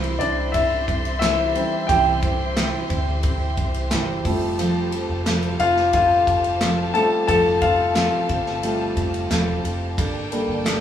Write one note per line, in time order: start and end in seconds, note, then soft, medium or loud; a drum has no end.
0.00 0.17 C2 medium
0.00 0.20 C3 medium
0.00 0.20 E3 medium
0.00 1.54 E3 medium
0.00 0.20 G3 medium
0.00 1.55 G3 medium
0.00 0.20 C4 medium
0.00 1.55 C4 medium
0.00 0.19 E4 loud
0.00 10.80 G4 medium
0.00 0.18 C5 loud
0.00 9.94 C5 medium
0.00 4.21 E5 medium
0.00 4.20 C6 medium
0.00 ride soft
0.19 0.84 C2 loud
0.19 0.52 G3 medium
0.19 0.53 C4 medium
0.19 0.52 D4 medium
0.19 0.54 E4 medium
0.19 0.54 C5 medium
0.19 0.51 D5 medium
0.19 ride medium
0.52 1.21 G3 medium
0.52 1.21 C4 medium
0.52 1.18 E4 medium
0.52 1.21 E4 medium
0.52 1.18 E5 medium
0.52 kick loud
0.52 ride medium
0.56 1.22 C5 medium
0.88 1.52 C2 medium
0.88 kick medium
0.88 ride medium
1.05 ride soft
1.19 1.55 C3 medium
1.19 1.55 E3 medium
1.19 1.55 G3 medium
1.19 1.55 C4 medium
1.19 1.85 E4 medium
1.19 1.54 E4 medium
1.19 1.53 C5 medium
1.19 1.90 E5 loud
1.19 snare loud
1.19 clap loud
1.19 ride medium
1.54 4.21 E3 medium
1.54 4.21 G3 soft
1.54 1.88 G3 soft
1.54 4.21 C4 medium
1.54 1.88 C4 medium
1.54 1.89 E4 medium
1.54 1.89 C5 medium
1.54 ride medium
1.87 2.70 C2 loud
1.87 2.22 C3 medium
1.87 2.23 E3 medium
1.87 2.23 G3 medium
1.87 2.23 C4 medium
1.87 2.22 E4 medium
1.87 3.20 G4 medium
1.87 2.21 C5 medium
1.87 3.19 G5 medium
1.87 kick loud
1.87 ride medium
2.22 2.55 G3 soft
2.22 2.55 C4 soft
2.22 2.56 E4 medium
2.22 2.56 C5 medium
2.22 kick medium
2.22 ride medium
2.55 2.90 C3 medium
2.55 2.90 E3 medium
2.55 2.90 G3 medium
2.55 2.90 C4 medium
2.55 2.89 E4 medium
2.55 2.88 C5 medium
2.55 snare loud
2.55 clap medium
2.55 ride medium
2.89 3.54 D2 loud
2.89 3.22 G3 medium
2.89 3.23 C4 medium
2.89 3.24 E4 medium
2.89 3.23 C5 medium
2.89 kick medium
2.89 ride medium
3.23 3.91 G3 medium
3.23 3.92 C4 medium
3.23 3.91 E4 medium
3.23 3.92 C5 medium
3.23 kick loud
3.23 ride medium
3.57 3.89 C2 loud
3.57 kick medium
3.57 ride medium
3.74 ride soft
3.91 4.23 G1 medium
3.91 4.25 C3 medium
3.91 4.25 E3 medium
3.91 4.25 G3 medium
3.91 4.25 C4 medium
3.91 4.25 E4 medium
3.91 4.24 C5 medium
3.91 snare loud
3.91 clap loud
3.91 ride medium
4.24 5.05 F1 medium
4.24 6.91 F3 medium
4.24 6.91 G3 soft
4.24 6.91 A3 medium
4.24 4.58 C4 soft
4.24 4.59 G4 soft
4.24 4.58 A4 medium
4.24 9.94 F5 medium
4.24 9.94 A5 medium
4.24 kick loud
4.24 open hi-hat medium
4.24 ride soft
4.59 4.92 F3 medium
4.59 4.93 G3 medium
4.59 4.93 C4 medium
4.59 4.92 G4 medium
4.59 4.90 A4 medium
4.59 hi-hat pedal medium
4.59 ride medium
4.92 5.26 C4 soft
4.92 5.26 G4 soft
4.92 5.26 A4 medium
4.92 ride medium
5.09 5.56 F1 medium
5.26 5.60 F3 medium
5.26 5.60 G3 medium
5.26 5.60 C4 medium
5.26 5.59 G4 medium
5.26 5.58 A4 medium
5.26 snare loud
5.26 clap medium
5.26 ride medium
5.43 ride soft
5.59 6.23 F1 loud
5.59 5.93 C4 medium
5.59 5.92 F4 medium
5.59 5.94 G4 medium
5.59 5.93 A4 medium
5.59 5.91 F5 medium
5.59 ride medium
5.76 snare soft
5.93 6.61 G3 medium
5.93 6.60 C4 medium
5.93 6.91 F4 medium
5.93 6.62 G4 medium
5.93 6.62 A4 medium
5.93 6.98 F5 medium
5.93 kick loud
5.93 ride medium
6.27 6.91 F1 medium
6.27 kick medium
6.27 ride medium
6.44 ride soft
6.61 6.95 F3 medium
6.61 6.95 G3 medium
6.61 6.95 C4 medium
6.61 6.95 G4 medium
6.61 6.93 A4 loud
6.61 snare loud
6.61 clap medium
6.61 ride medium
6.94 8.62 F3 medium
6.94 8.62 G3 soft
6.94 8.63 A3 medium
6.94 7.28 C4 soft
6.94 7.28 G4 medium
6.94 7.28 A4 medium
6.94 7.26 A4 medium
6.94 7.26 A5 loud
6.94 ride soft
7.27 8.09 F1 loud
7.27 7.62 F3 medium
7.27 7.62 G3 medium
7.27 7.62 C4 medium
7.27 7.62 G4 medium
7.27 7.37 A4 medium
7.27 7.60 A4 medium
7.27 7.35 A5 loud
7.27 kick loud
7.27 ride medium
7.61 7.95 C4 soft
7.61 9.61 F4 medium
7.61 7.95 G4 medium
7.61 7.96 A4 medium
7.61 9.60 F5 medium
7.61 kick medium
7.61 ride medium
7.95 8.29 F3 medium
7.95 8.29 G3 medium
7.95 8.30 C4 loud
7.95 8.29 G4 medium
7.95 8.27 A4 medium
7.95 snare loud
7.95 clap medium
7.95 ride medium
8.29 8.93 G1 loud
8.29 8.62 C4 medium
8.29 8.63 G4 medium
8.29 8.63 A4 medium
8.29 kick medium
8.29 ride medium
8.46 snare soft
8.62 8.94 F3 soft
8.62 9.30 G3 medium
8.62 8.94 G3 soft
8.62 8.94 A3 soft
8.62 9.30 C4 medium
8.62 9.31 G4 medium
8.62 9.31 A4 medium
8.62 ride medium
8.97 9.28 F1 medium
8.97 kick medium
8.97 ride medium
9.14 ride soft
9.30 9.62 E1 medium
9.30 9.64 F3 medium
9.30 9.64 G3 medium
9.30 9.64 C4 medium
9.30 9.63 G4 medium
9.30 9.62 A4 loud
9.30 snare loud
9.30 clap loud
9.30 ride medium
9.63 9.98 F1 medium
9.63 9.98 C4 soft
9.63 9.97 G4 medium
9.63 9.97 A4 medium
9.63 ride medium
9.97 10.45 G1 loud
9.97 10.31 G3 medium
9.97 10.31 A#3 medium
9.97 10.32 D4 loud
9.97 10.31 G4 medium
9.97 10.30 A4 medium
9.97 10.80 D5 medium
9.97 10.80 G5 medium
9.97 10.80 A5 medium
9.97 kick loud
9.97 ride medium
10.31 10.80 G3 soft
10.31 10.80 A#3 medium
10.31 10.64 D4 soft
10.31 10.64 G4 medium
10.31 10.65 A4 medium
10.31 10.80 A4 soft
10.31 ride medium
10.49 10.80 G1 medium
10.64 10.80 G3 medium
10.64 10.80 A#3 medium
10.64 10.80 D4 medium
10.64 10.80 G4 medium
10.64 10.80 A4 medium
10.64 snare loud
10.64 clap loud
10.64 ride medium